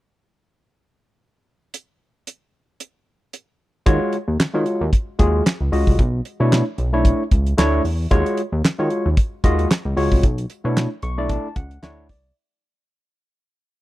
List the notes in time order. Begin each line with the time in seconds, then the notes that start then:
1.74 closed hi-hat
2.27 closed hi-hat
2.80 closed hi-hat
3.33 closed hi-hat
3.86 D#2 G#3 F4 F#4 C#5, kick, closed hi-hat
4.13 closed hi-hat
4.28 D#2
4.40 D#3, snare, clap, closed hi-hat
4.54 D#3 G#3 F4 F#4 C#5
4.66 closed hi-hat
4.81 D#2
4.93 kick, closed hi-hat
5.19 D#2 G#3 F4 F#4 G#4, kick, closed hi-hat
5.46 snare, clap, closed hi-hat
5.61 C#2
5.72 C#2 G#3 F4 F#4 D#5, open hi-hat
5.87 C2, kick
5.99 B1, kick, closed hi-hat
6.25 closed hi-hat
6.40 B2 A3 D4 E4 C#5
6.52 snare, clap, closed hi-hat
6.78 B1, closed hi-hat
6.93 A3 D4 E4 C#5
7.05 kick, closed hi-hat
7.31 C#2, kick, closed hi-hat
7.47 closed hi-hat
7.58 D2 A3 D4 E4 C#5, snare, clap, closed hi-hat
7.85 E2, open hi-hat
8.11 D#2 G#3 F4 F#4 C#5, kick, closed hi-hat
8.26 closed hi-hat
8.37 closed hi-hat
8.52 D#2
8.64 D#3, snare, clap, closed hi-hat
8.79 D#3 G#3 F4 F#4 C#5
8.90 closed hi-hat
9.06 D#2
9.17 kick, closed hi-hat
9.44 D#2 G#3 F4 F#4 D#5, kick, closed hi-hat
9.59 closed hi-hat
9.71 snare, clap, closed hi-hat
9.85 C#2
9.96 C#2 G#3 F4 F#4 C#5, open hi-hat
10.12 C2, kick
10.23 B1, kick, closed hi-hat
10.38 closed hi-hat
10.50 closed hi-hat
10.64 B2 A3 D4 E4 C#5
10.77 snare, clap, closed hi-hat
11.02 B1 C#6, closed hi-hat
11.17 A3 D4 E4 D5
11.29 A5, kick, closed hi-hat
11.56 C#2 F#5, kick, closed hi-hat
11.71 closed hi-hat
11.83 D2 A3 D4 E4 C#5 F#5, snare, clap, closed hi-hat
12.09 C2, kick, open hi-hat